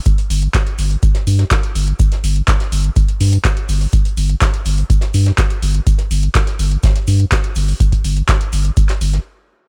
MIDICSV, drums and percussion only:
0, 0, Header, 1, 2, 480
1, 0, Start_track
1, 0, Tempo, 483871
1, 60, Time_signature, 4, 2, 24, 8
1, 9603, End_track
2, 0, Start_track
2, 0, Title_t, "Drums"
2, 55, Note_on_c, 9, 82, 96
2, 60, Note_on_c, 9, 36, 121
2, 60, Note_on_c, 9, 42, 62
2, 154, Note_off_c, 9, 82, 0
2, 159, Note_off_c, 9, 36, 0
2, 160, Note_off_c, 9, 42, 0
2, 181, Note_on_c, 9, 42, 34
2, 182, Note_off_c, 9, 42, 0
2, 182, Note_on_c, 9, 42, 43
2, 281, Note_off_c, 9, 42, 0
2, 300, Note_on_c, 9, 46, 106
2, 306, Note_on_c, 9, 82, 72
2, 399, Note_off_c, 9, 46, 0
2, 405, Note_off_c, 9, 82, 0
2, 421, Note_on_c, 9, 42, 38
2, 520, Note_off_c, 9, 42, 0
2, 539, Note_on_c, 9, 82, 77
2, 540, Note_on_c, 9, 36, 121
2, 540, Note_on_c, 9, 38, 111
2, 540, Note_on_c, 9, 39, 114
2, 540, Note_on_c, 9, 42, 61
2, 638, Note_off_c, 9, 82, 0
2, 639, Note_off_c, 9, 36, 0
2, 639, Note_off_c, 9, 38, 0
2, 639, Note_off_c, 9, 39, 0
2, 639, Note_off_c, 9, 42, 0
2, 660, Note_on_c, 9, 42, 34
2, 760, Note_off_c, 9, 42, 0
2, 776, Note_on_c, 9, 82, 65
2, 780, Note_on_c, 9, 46, 109
2, 875, Note_off_c, 9, 82, 0
2, 879, Note_off_c, 9, 46, 0
2, 898, Note_on_c, 9, 42, 48
2, 900, Note_off_c, 9, 42, 0
2, 900, Note_on_c, 9, 42, 34
2, 999, Note_off_c, 9, 42, 0
2, 1019, Note_on_c, 9, 36, 124
2, 1019, Note_on_c, 9, 82, 83
2, 1020, Note_on_c, 9, 42, 64
2, 1118, Note_off_c, 9, 82, 0
2, 1119, Note_off_c, 9, 36, 0
2, 1119, Note_off_c, 9, 42, 0
2, 1136, Note_on_c, 9, 38, 50
2, 1140, Note_on_c, 9, 42, 38
2, 1235, Note_off_c, 9, 38, 0
2, 1239, Note_off_c, 9, 42, 0
2, 1260, Note_on_c, 9, 46, 110
2, 1261, Note_on_c, 9, 82, 73
2, 1359, Note_off_c, 9, 46, 0
2, 1361, Note_off_c, 9, 82, 0
2, 1376, Note_on_c, 9, 38, 48
2, 1380, Note_on_c, 9, 42, 36
2, 1476, Note_off_c, 9, 38, 0
2, 1479, Note_off_c, 9, 42, 0
2, 1496, Note_on_c, 9, 82, 100
2, 1499, Note_on_c, 9, 36, 118
2, 1499, Note_on_c, 9, 38, 123
2, 1500, Note_on_c, 9, 39, 122
2, 1500, Note_on_c, 9, 42, 61
2, 1595, Note_off_c, 9, 82, 0
2, 1598, Note_off_c, 9, 38, 0
2, 1599, Note_off_c, 9, 36, 0
2, 1599, Note_off_c, 9, 39, 0
2, 1599, Note_off_c, 9, 42, 0
2, 1621, Note_on_c, 9, 42, 37
2, 1720, Note_off_c, 9, 42, 0
2, 1740, Note_on_c, 9, 46, 108
2, 1740, Note_on_c, 9, 82, 61
2, 1839, Note_off_c, 9, 46, 0
2, 1840, Note_off_c, 9, 82, 0
2, 1860, Note_on_c, 9, 42, 38
2, 1960, Note_off_c, 9, 42, 0
2, 1978, Note_on_c, 9, 82, 93
2, 1979, Note_on_c, 9, 36, 116
2, 1981, Note_on_c, 9, 42, 59
2, 2077, Note_off_c, 9, 82, 0
2, 2079, Note_off_c, 9, 36, 0
2, 2080, Note_off_c, 9, 42, 0
2, 2101, Note_on_c, 9, 42, 36
2, 2106, Note_on_c, 9, 38, 32
2, 2200, Note_off_c, 9, 42, 0
2, 2205, Note_off_c, 9, 38, 0
2, 2220, Note_on_c, 9, 46, 108
2, 2221, Note_on_c, 9, 82, 76
2, 2319, Note_off_c, 9, 46, 0
2, 2321, Note_off_c, 9, 82, 0
2, 2341, Note_on_c, 9, 42, 40
2, 2440, Note_off_c, 9, 42, 0
2, 2448, Note_on_c, 9, 38, 103
2, 2459, Note_on_c, 9, 36, 114
2, 2460, Note_on_c, 9, 39, 114
2, 2460, Note_on_c, 9, 42, 60
2, 2462, Note_on_c, 9, 82, 80
2, 2548, Note_off_c, 9, 38, 0
2, 2558, Note_off_c, 9, 36, 0
2, 2559, Note_off_c, 9, 39, 0
2, 2559, Note_off_c, 9, 42, 0
2, 2562, Note_off_c, 9, 82, 0
2, 2581, Note_on_c, 9, 42, 36
2, 2583, Note_on_c, 9, 38, 46
2, 2680, Note_off_c, 9, 42, 0
2, 2682, Note_off_c, 9, 38, 0
2, 2700, Note_on_c, 9, 46, 110
2, 2703, Note_on_c, 9, 82, 68
2, 2800, Note_off_c, 9, 46, 0
2, 2802, Note_off_c, 9, 82, 0
2, 2820, Note_on_c, 9, 42, 37
2, 2920, Note_off_c, 9, 42, 0
2, 2938, Note_on_c, 9, 82, 88
2, 2939, Note_on_c, 9, 36, 112
2, 2940, Note_on_c, 9, 42, 63
2, 3038, Note_off_c, 9, 36, 0
2, 3038, Note_off_c, 9, 82, 0
2, 3039, Note_off_c, 9, 42, 0
2, 3060, Note_on_c, 9, 42, 38
2, 3159, Note_off_c, 9, 42, 0
2, 3176, Note_on_c, 9, 46, 78
2, 3180, Note_off_c, 9, 46, 0
2, 3180, Note_on_c, 9, 46, 108
2, 3279, Note_off_c, 9, 46, 0
2, 3299, Note_on_c, 9, 42, 43
2, 3300, Note_off_c, 9, 42, 0
2, 3300, Note_on_c, 9, 42, 37
2, 3399, Note_off_c, 9, 42, 0
2, 3419, Note_on_c, 9, 36, 116
2, 3420, Note_on_c, 9, 38, 121
2, 3420, Note_on_c, 9, 39, 116
2, 3420, Note_on_c, 9, 42, 61
2, 3424, Note_on_c, 9, 82, 80
2, 3518, Note_off_c, 9, 36, 0
2, 3519, Note_off_c, 9, 38, 0
2, 3519, Note_off_c, 9, 39, 0
2, 3519, Note_off_c, 9, 42, 0
2, 3523, Note_off_c, 9, 82, 0
2, 3540, Note_on_c, 9, 42, 39
2, 3639, Note_off_c, 9, 42, 0
2, 3658, Note_on_c, 9, 82, 69
2, 3660, Note_on_c, 9, 46, 104
2, 3757, Note_off_c, 9, 82, 0
2, 3759, Note_off_c, 9, 46, 0
2, 3780, Note_on_c, 9, 42, 45
2, 3780, Note_on_c, 9, 46, 62
2, 3879, Note_off_c, 9, 46, 0
2, 3880, Note_off_c, 9, 42, 0
2, 3894, Note_on_c, 9, 82, 87
2, 3899, Note_on_c, 9, 36, 112
2, 3900, Note_on_c, 9, 42, 66
2, 3993, Note_off_c, 9, 82, 0
2, 3999, Note_off_c, 9, 36, 0
2, 3999, Note_off_c, 9, 42, 0
2, 4020, Note_on_c, 9, 42, 38
2, 4023, Note_off_c, 9, 42, 0
2, 4023, Note_on_c, 9, 42, 43
2, 4122, Note_off_c, 9, 42, 0
2, 4137, Note_on_c, 9, 82, 63
2, 4140, Note_on_c, 9, 46, 100
2, 4236, Note_off_c, 9, 82, 0
2, 4239, Note_off_c, 9, 46, 0
2, 4260, Note_on_c, 9, 42, 40
2, 4359, Note_off_c, 9, 42, 0
2, 4377, Note_on_c, 9, 38, 112
2, 4378, Note_on_c, 9, 82, 86
2, 4379, Note_on_c, 9, 36, 105
2, 4380, Note_on_c, 9, 39, 107
2, 4380, Note_on_c, 9, 42, 62
2, 4477, Note_off_c, 9, 38, 0
2, 4477, Note_off_c, 9, 82, 0
2, 4478, Note_off_c, 9, 36, 0
2, 4479, Note_off_c, 9, 39, 0
2, 4479, Note_off_c, 9, 42, 0
2, 4500, Note_on_c, 9, 42, 37
2, 4599, Note_off_c, 9, 42, 0
2, 4614, Note_on_c, 9, 82, 70
2, 4620, Note_on_c, 9, 46, 106
2, 4714, Note_off_c, 9, 82, 0
2, 4719, Note_off_c, 9, 46, 0
2, 4741, Note_on_c, 9, 42, 37
2, 4742, Note_off_c, 9, 42, 0
2, 4742, Note_on_c, 9, 42, 43
2, 4842, Note_off_c, 9, 42, 0
2, 4859, Note_on_c, 9, 36, 110
2, 4860, Note_on_c, 9, 42, 64
2, 4869, Note_on_c, 9, 82, 88
2, 4959, Note_off_c, 9, 36, 0
2, 4960, Note_off_c, 9, 42, 0
2, 4969, Note_off_c, 9, 82, 0
2, 4972, Note_on_c, 9, 38, 60
2, 4980, Note_on_c, 9, 42, 40
2, 5071, Note_off_c, 9, 38, 0
2, 5079, Note_off_c, 9, 42, 0
2, 5096, Note_on_c, 9, 82, 64
2, 5100, Note_on_c, 9, 46, 105
2, 5195, Note_off_c, 9, 82, 0
2, 5199, Note_off_c, 9, 46, 0
2, 5220, Note_on_c, 9, 38, 46
2, 5220, Note_on_c, 9, 42, 36
2, 5319, Note_off_c, 9, 38, 0
2, 5319, Note_off_c, 9, 42, 0
2, 5336, Note_on_c, 9, 38, 123
2, 5339, Note_on_c, 9, 36, 116
2, 5339, Note_on_c, 9, 39, 114
2, 5339, Note_on_c, 9, 42, 66
2, 5341, Note_on_c, 9, 82, 90
2, 5435, Note_off_c, 9, 38, 0
2, 5438, Note_off_c, 9, 39, 0
2, 5438, Note_off_c, 9, 42, 0
2, 5439, Note_off_c, 9, 36, 0
2, 5440, Note_off_c, 9, 82, 0
2, 5460, Note_on_c, 9, 42, 40
2, 5559, Note_off_c, 9, 42, 0
2, 5579, Note_on_c, 9, 46, 104
2, 5584, Note_on_c, 9, 82, 60
2, 5679, Note_off_c, 9, 46, 0
2, 5683, Note_off_c, 9, 82, 0
2, 5700, Note_on_c, 9, 42, 40
2, 5799, Note_off_c, 9, 42, 0
2, 5819, Note_on_c, 9, 36, 107
2, 5820, Note_on_c, 9, 42, 69
2, 5823, Note_on_c, 9, 82, 90
2, 5919, Note_off_c, 9, 36, 0
2, 5919, Note_off_c, 9, 42, 0
2, 5922, Note_off_c, 9, 82, 0
2, 5935, Note_on_c, 9, 38, 37
2, 5940, Note_on_c, 9, 42, 38
2, 6034, Note_off_c, 9, 38, 0
2, 6039, Note_off_c, 9, 42, 0
2, 6060, Note_on_c, 9, 46, 101
2, 6061, Note_on_c, 9, 82, 77
2, 6159, Note_off_c, 9, 46, 0
2, 6160, Note_off_c, 9, 82, 0
2, 6180, Note_on_c, 9, 42, 43
2, 6279, Note_off_c, 9, 42, 0
2, 6295, Note_on_c, 9, 38, 102
2, 6299, Note_on_c, 9, 36, 111
2, 6300, Note_on_c, 9, 39, 110
2, 6300, Note_on_c, 9, 42, 67
2, 6300, Note_on_c, 9, 82, 76
2, 6394, Note_off_c, 9, 38, 0
2, 6399, Note_off_c, 9, 36, 0
2, 6399, Note_off_c, 9, 39, 0
2, 6399, Note_off_c, 9, 42, 0
2, 6399, Note_off_c, 9, 82, 0
2, 6415, Note_on_c, 9, 38, 44
2, 6420, Note_on_c, 9, 42, 39
2, 6514, Note_off_c, 9, 38, 0
2, 6520, Note_off_c, 9, 42, 0
2, 6540, Note_on_c, 9, 46, 104
2, 6541, Note_on_c, 9, 82, 58
2, 6639, Note_off_c, 9, 46, 0
2, 6641, Note_off_c, 9, 82, 0
2, 6660, Note_on_c, 9, 42, 40
2, 6759, Note_off_c, 9, 42, 0
2, 6777, Note_on_c, 9, 82, 73
2, 6780, Note_on_c, 9, 36, 113
2, 6780, Note_on_c, 9, 42, 65
2, 6783, Note_on_c, 9, 38, 91
2, 6876, Note_off_c, 9, 82, 0
2, 6879, Note_off_c, 9, 36, 0
2, 6879, Note_off_c, 9, 42, 0
2, 6882, Note_off_c, 9, 38, 0
2, 6900, Note_on_c, 9, 42, 42
2, 6901, Note_on_c, 9, 38, 44
2, 6999, Note_off_c, 9, 42, 0
2, 7000, Note_off_c, 9, 38, 0
2, 7013, Note_on_c, 9, 82, 61
2, 7020, Note_on_c, 9, 46, 97
2, 7112, Note_off_c, 9, 82, 0
2, 7119, Note_off_c, 9, 46, 0
2, 7140, Note_on_c, 9, 42, 38
2, 7239, Note_off_c, 9, 42, 0
2, 7260, Note_on_c, 9, 36, 110
2, 7260, Note_on_c, 9, 39, 123
2, 7260, Note_on_c, 9, 42, 69
2, 7262, Note_on_c, 9, 38, 124
2, 7262, Note_on_c, 9, 82, 98
2, 7359, Note_off_c, 9, 36, 0
2, 7359, Note_off_c, 9, 39, 0
2, 7359, Note_off_c, 9, 42, 0
2, 7361, Note_off_c, 9, 38, 0
2, 7361, Note_off_c, 9, 82, 0
2, 7380, Note_on_c, 9, 42, 39
2, 7479, Note_off_c, 9, 42, 0
2, 7492, Note_on_c, 9, 82, 63
2, 7500, Note_on_c, 9, 46, 99
2, 7591, Note_off_c, 9, 82, 0
2, 7599, Note_off_c, 9, 46, 0
2, 7620, Note_on_c, 9, 46, 56
2, 7623, Note_on_c, 9, 42, 43
2, 7720, Note_off_c, 9, 46, 0
2, 7722, Note_off_c, 9, 42, 0
2, 7740, Note_on_c, 9, 36, 108
2, 7740, Note_on_c, 9, 42, 68
2, 7747, Note_on_c, 9, 82, 87
2, 7839, Note_off_c, 9, 36, 0
2, 7839, Note_off_c, 9, 42, 0
2, 7846, Note_off_c, 9, 82, 0
2, 7860, Note_on_c, 9, 36, 62
2, 7860, Note_on_c, 9, 42, 40
2, 7864, Note_off_c, 9, 42, 0
2, 7864, Note_on_c, 9, 42, 42
2, 7959, Note_off_c, 9, 36, 0
2, 7963, Note_off_c, 9, 42, 0
2, 7980, Note_on_c, 9, 46, 102
2, 7983, Note_on_c, 9, 82, 72
2, 8079, Note_off_c, 9, 46, 0
2, 8083, Note_off_c, 9, 82, 0
2, 8101, Note_on_c, 9, 42, 45
2, 8200, Note_off_c, 9, 42, 0
2, 8216, Note_on_c, 9, 82, 79
2, 8218, Note_on_c, 9, 38, 104
2, 8220, Note_on_c, 9, 36, 114
2, 8220, Note_on_c, 9, 39, 122
2, 8220, Note_on_c, 9, 42, 71
2, 8315, Note_off_c, 9, 82, 0
2, 8317, Note_off_c, 9, 38, 0
2, 8319, Note_off_c, 9, 36, 0
2, 8320, Note_off_c, 9, 39, 0
2, 8320, Note_off_c, 9, 42, 0
2, 8340, Note_on_c, 9, 42, 41
2, 8440, Note_off_c, 9, 42, 0
2, 8457, Note_on_c, 9, 82, 70
2, 8460, Note_on_c, 9, 46, 102
2, 8556, Note_off_c, 9, 82, 0
2, 8559, Note_off_c, 9, 46, 0
2, 8577, Note_on_c, 9, 42, 40
2, 8580, Note_off_c, 9, 42, 0
2, 8580, Note_on_c, 9, 42, 41
2, 8679, Note_off_c, 9, 42, 0
2, 8699, Note_on_c, 9, 82, 91
2, 8700, Note_on_c, 9, 36, 114
2, 8700, Note_on_c, 9, 42, 66
2, 8798, Note_off_c, 9, 82, 0
2, 8799, Note_off_c, 9, 36, 0
2, 8799, Note_off_c, 9, 42, 0
2, 8820, Note_on_c, 9, 39, 37
2, 8820, Note_on_c, 9, 42, 41
2, 8824, Note_on_c, 9, 38, 60
2, 8919, Note_off_c, 9, 39, 0
2, 8919, Note_off_c, 9, 42, 0
2, 8924, Note_off_c, 9, 38, 0
2, 8938, Note_on_c, 9, 82, 77
2, 8940, Note_on_c, 9, 46, 101
2, 9037, Note_off_c, 9, 82, 0
2, 9039, Note_off_c, 9, 46, 0
2, 9061, Note_on_c, 9, 38, 45
2, 9061, Note_on_c, 9, 42, 39
2, 9160, Note_off_c, 9, 38, 0
2, 9160, Note_off_c, 9, 42, 0
2, 9603, End_track
0, 0, End_of_file